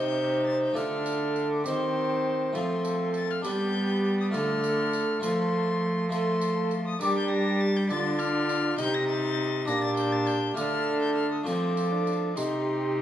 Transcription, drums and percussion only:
0.76 tambourine
1.06 tambourine
1.36 tambourine
1.66 tambourine
2.55 tambourine
2.85 tambourine
3.14 tambourine
3.44 tambourine
4.34 tambourine
4.64 tambourine
4.93 tambourine
5.23 tambourine
6.12 tambourine
6.41 tambourine
6.71 tambourine
7.01 tambourine
7.90 tambourine
8.20 tambourine
8.49 tambourine
8.78 tambourine
9.68 tambourine
9.97 tambourine
10.27 tambourine
10.57 tambourine
11.47 tambourine
11.77 tambourine
12.07 tambourine
12.37 tambourine

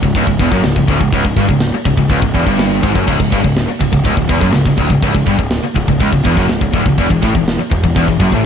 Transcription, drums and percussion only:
0.03 kick
0.15 kick, open hi-hat
0.27 kick
0.39 kick, open hi-hat
0.52 kick
0.64 snare, open hi-hat
0.76 kick
0.88 kick, open hi-hat
1.01 kick
1.13 kick, open hi-hat
1.25 kick
1.36 kick, open hi-hat
1.49 kick
1.60 snare, open hi-hat
1.85 kick, open hi-hat
1.97 kick
2.09 kick, open hi-hat
2.22 kick
2.34 kick, open hi-hat
2.47 kick
2.59 snare, open hi-hat
2.83 kick, open hi-hat
2.95 kick
3.08 kick, crash
3.20 kick
3.32 kick, open hi-hat
3.44 kick
3.56 snare, open hi-hat
3.81 kick, open hi-hat
3.93 kick
4.05 kick, open hi-hat
4.17 kick
4.29 kick, open hi-hat
4.41 kick
4.52 snare, open hi-hat
4.65 kick
4.77 kick, open hi-hat
4.90 kick
5.02 kick, open hi-hat
5.15 kick
5.26 kick, open hi-hat
5.39 kick
5.50 snare, open hi-hat
5.76 kick, open hi-hat
5.88 kick
6.00 kick, open hi-hat
6.13 kick
6.25 kick, open hi-hat
6.37 kick
6.49 snare, open hi-hat
6.61 kick
6.73 kick, open hi-hat
6.86 kick
6.98 kick, open hi-hat
7.10 kick
7.23 kick, open hi-hat
7.35 kick
7.48 snare, open hi-hat
7.71 kick, open hi-hat
7.84 kick
7.96 kick, open hi-hat
8.08 kick
8.20 kick, open hi-hat
8.32 kick

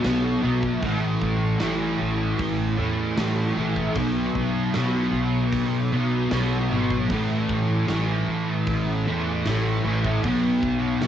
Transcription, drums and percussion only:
0.04 snare, open hi-hat
0.63 kick
0.83 kick, open hi-hat
1.22 kick
1.60 snare, open hi-hat
2.39 kick, open hi-hat
3.18 snare, open hi-hat
3.76 kick
3.95 kick, open hi-hat
4.35 kick
4.74 snare, open hi-hat
5.52 kick, open hi-hat
6.31 snare, open hi-hat
6.90 kick
7.09 kick, open hi-hat
7.49 kick
7.88 snare, open hi-hat
8.66 kick, open hi-hat
9.46 snare, open hi-hat
10.05 kick
10.23 kick, open hi-hat
10.63 kick
11.02 snare, open hi-hat

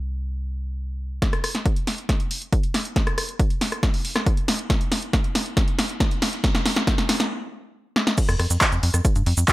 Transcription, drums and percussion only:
1.22 kick, snare, closed hi-hat
1.33 cross-stick, closed hi-hat
1.44 cross-stick, open hi-hat
1.55 snare, closed hi-hat
1.66 kick, closed hi-hat
1.76 closed hi-hat
1.87 snare, open hi-hat
1.98 closed hi-hat
2.09 kick, snare, closed hi-hat
2.20 closed hi-hat
2.31 open hi-hat
2.42 closed hi-hat
2.53 kick, closed hi-hat
2.63 closed hi-hat
2.74 snare, open hi-hat
2.85 closed hi-hat
2.96 kick, snare, closed hi-hat
3.07 cross-stick, closed hi-hat
3.18 cross-stick, open hi-hat
3.29 closed hi-hat
3.40 kick, closed hi-hat
3.50 closed hi-hat
3.61 snare, open hi-hat
3.72 cross-stick, closed hi-hat
3.83 kick, snare, closed hi-hat
3.94 open hi-hat
4.05 open hi-hat
4.16 cross-stick, snare, closed hi-hat
4.26 kick, closed hi-hat
4.37 closed hi-hat
4.48 snare, open hi-hat
4.59 closed hi-hat
4.70 kick, snare, closed hi-hat
4.81 closed hi-hat
4.92 snare, open hi-hat
5.03 closed hi-hat
5.13 kick, snare, closed hi-hat
5.24 closed hi-hat
5.35 snare, open hi-hat
5.46 closed hi-hat
5.57 kick, snare, closed hi-hat
5.68 closed hi-hat
5.79 snare, open hi-hat
5.89 closed hi-hat
6.00 kick, snare, closed hi-hat
6.11 closed hi-hat
6.22 snare, open hi-hat
6.33 closed hi-hat
6.44 kick, snare, closed hi-hat
6.55 snare, closed hi-hat
6.66 snare, open hi-hat
6.76 snare, closed hi-hat
6.87 kick, snare, closed hi-hat
6.98 snare, closed hi-hat
7.09 snare, open hi-hat
7.20 snare
7.96 snare
8.07 snare
8.18 kick, closed hi-hat, crash, shaker
8.29 cross-stick, closed hi-hat, shaker
8.39 cross-stick, open hi-hat
8.50 closed hi-hat, shaker
8.61 kick, clap, closed hi-hat, shaker
8.72 closed hi-hat, shaker
8.83 open hi-hat
8.94 cross-stick, closed hi-hat, shaker
9.05 kick, closed hi-hat, shaker
9.16 closed hi-hat, shaker
9.26 open hi-hat
9.37 closed hi-hat, shaker
9.48 kick, clap, closed hi-hat, shaker

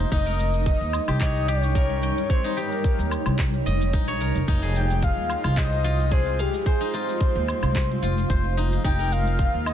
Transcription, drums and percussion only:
0.12 kick, cabasa
0.27 cabasa
0.40 cabasa
0.54 cabasa
0.66 kick, cabasa
0.93 cabasa, low woodblock
1.08 cabasa, low woodblock
1.21 kick, clap, cabasa
1.36 cabasa
1.49 cabasa
1.63 cabasa
1.75 kick, cabasa
2.03 cabasa
2.18 cabasa
2.30 kick, cabasa
2.45 cabasa
2.58 cabasa
2.72 cabasa
2.84 kick, cabasa
2.99 cabasa
3.11 cabasa, low woodblock
3.26 cabasa, low woodblock
3.39 kick, clap, cabasa
3.54 cabasa
3.67 cabasa
3.81 cabasa
3.93 kick, cabasa
4.21 cabasa
4.35 cabasa
4.48 kick, cabasa
4.63 cabasa
4.76 cabasa
4.90 cabasa
5.03 kick, cabasa
5.30 cabasa, low woodblock
5.44 cabasa, low woodblock
5.57 kick, clap, cabasa
5.72 cabasa
5.85 cabasa
6.00 cabasa
6.12 kick, cabasa
6.40 cabasa
6.54 cabasa
6.66 kick, cabasa
6.81 cabasa
6.94 cabasa
7.09 cabasa
7.21 kick, cabasa
7.48 cabasa, low woodblock
7.63 cabasa, low woodblock
7.75 kick, clap, cabasa
7.91 cabasa
8.04 cabasa
8.18 cabasa
8.30 kick, cabasa
8.58 cabasa
8.73 cabasa
8.84 kick, cabasa
9.00 cabasa
9.12 cabasa
9.27 cabasa
9.39 kick, cabasa
9.66 cabasa, low woodblock

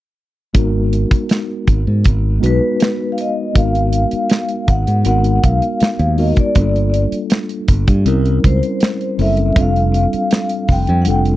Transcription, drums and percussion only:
0.55 kick, closed hi-hat
0.93 closed hi-hat
1.11 kick, closed hi-hat
1.29 snare, closed hi-hat
1.67 kick, closed hi-hat
2.04 kick, closed hi-hat
2.44 closed hi-hat
2.80 snare, closed hi-hat
3.18 closed hi-hat
3.55 kick, closed hi-hat
3.75 closed hi-hat
3.93 closed hi-hat
4.11 closed hi-hat
4.30 snare, closed hi-hat
4.49 closed hi-hat
4.68 kick, closed hi-hat
4.87 closed hi-hat
5.05 closed hi-hat
5.24 closed hi-hat
5.44 kick, closed hi-hat
5.62 closed hi-hat
5.80 snare, closed hi-hat
5.99 closed hi-hat
6.18 open hi-hat
6.36 kick, closed hi-hat
6.55 kick, closed hi-hat
6.76 closed hi-hat
6.94 closed hi-hat
7.12 closed hi-hat
7.30 snare, closed hi-hat
7.49 closed hi-hat
7.68 kick, closed hi-hat
7.87 kick, closed hi-hat
8.06 closed hi-hat
8.26 closed hi-hat
8.44 kick, closed hi-hat
8.63 closed hi-hat
8.80 snare, closed hi-hat
9.01 closed hi-hat
9.19 open hi-hat
9.37 closed hi-hat
9.56 kick, closed hi-hat
9.76 closed hi-hat
9.94 closed hi-hat
10.13 closed hi-hat
10.31 snare, closed hi-hat
10.49 closed hi-hat
10.68 kick, open hi-hat
10.87 closed hi-hat
11.05 closed hi-hat
11.25 closed hi-hat

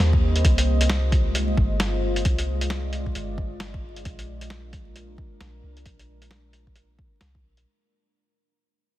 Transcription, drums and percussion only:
0.13 kick
0.36 closed hi-hat
0.45 kick, closed hi-hat
0.58 closed hi-hat
0.81 closed hi-hat
0.90 snare, closed hi-hat
1.12 kick, closed hi-hat
1.35 closed hi-hat
1.57 kick
1.80 snare, closed hi-hat
2.16 closed hi-hat
2.25 kick, closed hi-hat
2.38 closed hi-hat
2.61 closed hi-hat
2.70 snare, closed hi-hat
2.93 closed hi-hat
3.06 kick
3.15 closed hi-hat
3.38 kick
3.60 snare, closed hi-hat
3.74 kick
3.96 closed hi-hat
4.05 kick, closed hi-hat
4.19 closed hi-hat
4.41 closed hi-hat
4.50 snare, closed hi-hat
4.73 kick, closed hi-hat
4.96 closed hi-hat
5.18 kick
5.41 snare, closed hi-hat
5.77 closed hi-hat
5.86 kick, closed hi-hat
5.99 closed hi-hat
6.22 closed hi-hat
6.31 snare, closed hi-hat
6.53 closed hi-hat
6.67 kick
6.76 closed hi-hat
6.99 kick
7.21 snare, closed hi-hat
7.35 kick
7.57 closed hi-hat

